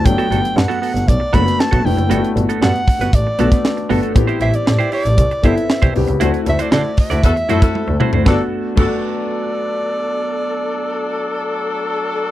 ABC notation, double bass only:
X:1
M:4/4
L:1/16
Q:1/4=117
K:G
V:1 name="Double bass" clef=bass
G,,,2 G,,,2 G,,2 z G,,, B,,,2 F,,,2 z B,,, =F,,, ^F,,, | G,,,2 G,,,2 G,,2 z G,,, A,,,2 B,,,2 z2 G,,,2 | A,,,2 A,,,2 A,,2 z A,,, C,,2 G,,,2 z C,, C,, ^C,, | D,,2 D,,2 D,2 z D,, E,,2 F,,2 z D,, z D,, |
G,,, z3 G,,,12- | G,,,16 |]